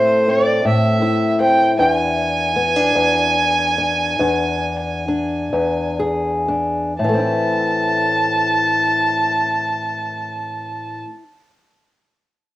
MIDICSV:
0, 0, Header, 1, 3, 480
1, 0, Start_track
1, 0, Key_signature, 0, "minor"
1, 0, Tempo, 756620
1, 1132, Time_signature, 12, 3, 24, 8
1, 1623, Tempo, 817439
1, 2583, Tempo, 875912
1, 3063, Tempo, 927357
1, 3543, Tempo, 993377
1, 4023, Tempo, 1029160
1, 6617, End_track
2, 0, Start_track
2, 0, Title_t, "Fiddle"
2, 0, Program_c, 0, 110
2, 0, Note_on_c, 0, 72, 92
2, 188, Note_on_c, 0, 74, 89
2, 198, Note_off_c, 0, 72, 0
2, 420, Note_off_c, 0, 74, 0
2, 424, Note_on_c, 0, 76, 78
2, 870, Note_off_c, 0, 76, 0
2, 896, Note_on_c, 0, 79, 86
2, 1118, Note_off_c, 0, 79, 0
2, 1136, Note_on_c, 0, 79, 102
2, 1212, Note_off_c, 0, 79, 0
2, 1212, Note_on_c, 0, 80, 102
2, 3525, Note_off_c, 0, 80, 0
2, 4025, Note_on_c, 0, 81, 88
2, 5890, Note_off_c, 0, 81, 0
2, 6617, End_track
3, 0, Start_track
3, 0, Title_t, "Steel-string acoustic guitar"
3, 0, Program_c, 1, 25
3, 0, Note_on_c, 1, 45, 70
3, 0, Note_on_c, 1, 57, 51
3, 0, Note_on_c, 1, 60, 57
3, 0, Note_on_c, 1, 64, 69
3, 169, Note_off_c, 1, 60, 0
3, 177, Note_on_c, 1, 60, 58
3, 402, Note_off_c, 1, 45, 0
3, 410, Note_on_c, 1, 45, 69
3, 643, Note_off_c, 1, 64, 0
3, 646, Note_on_c, 1, 64, 67
3, 880, Note_off_c, 1, 60, 0
3, 888, Note_on_c, 1, 60, 61
3, 1101, Note_off_c, 1, 60, 0
3, 1104, Note_off_c, 1, 57, 0
3, 1129, Note_off_c, 1, 45, 0
3, 1134, Note_on_c, 1, 40, 75
3, 1141, Note_on_c, 1, 62, 60
3, 1621, Note_off_c, 1, 62, 0
3, 1623, Note_on_c, 1, 59, 55
3, 1740, Note_off_c, 1, 59, 0
3, 1740, Note_on_c, 1, 62, 53
3, 1847, Note_off_c, 1, 40, 0
3, 1854, Note_on_c, 1, 40, 73
3, 2091, Note_off_c, 1, 64, 0
3, 2333, Note_off_c, 1, 62, 0
3, 2340, Note_on_c, 1, 62, 64
3, 2576, Note_off_c, 1, 40, 0
3, 2579, Note_off_c, 1, 62, 0
3, 2583, Note_on_c, 1, 40, 73
3, 2586, Note_on_c, 1, 62, 54
3, 3064, Note_off_c, 1, 62, 0
3, 3070, Note_on_c, 1, 62, 59
3, 3294, Note_off_c, 1, 40, 0
3, 3300, Note_on_c, 1, 40, 79
3, 3542, Note_on_c, 1, 68, 66
3, 3772, Note_off_c, 1, 62, 0
3, 3778, Note_on_c, 1, 62, 58
3, 3993, Note_off_c, 1, 62, 0
3, 3993, Note_off_c, 1, 68, 0
3, 4024, Note_off_c, 1, 40, 0
3, 4024, Note_on_c, 1, 45, 60
3, 4048, Note_on_c, 1, 52, 58
3, 4069, Note_on_c, 1, 57, 62
3, 4093, Note_on_c, 1, 60, 54
3, 4116, Note_on_c, 1, 64, 54
3, 5907, Note_off_c, 1, 45, 0
3, 5931, Note_off_c, 1, 52, 0
3, 5953, Note_off_c, 1, 57, 0
3, 5977, Note_off_c, 1, 60, 0
3, 5999, Note_off_c, 1, 64, 0
3, 6617, End_track
0, 0, End_of_file